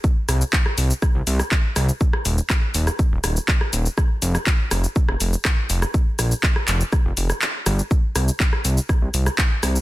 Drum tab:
HH |--o---o---o---o-|--o---o---o---o-|--o---o---o---o-|--o---o---o---o-|
SH |x-xxx-xxx-xxx-xx|x-xxx-xxx-xxx-xx|x-xxx-xxx-xxx-xx|x-xxx-xxx-xxx-xx|
CP |----x-------x---|----x-------x---|----x-------x---|----x-x-----x---|
SD |--r--r--r--r--r-|-r--r--r--r--r--|r--r--r--r--r--r|--r--r--r--r--r-|
BD |o---o---o---o---|o---o---o---o---|o---o---o---o---|o---o---o-------|

HH |--o---o---o---o-|
SH |x-xxx-xxx-xxx-xx|
CP |----x-------x---|
SD |--r--r--r--r--r-|
BD |o---o---o---o---|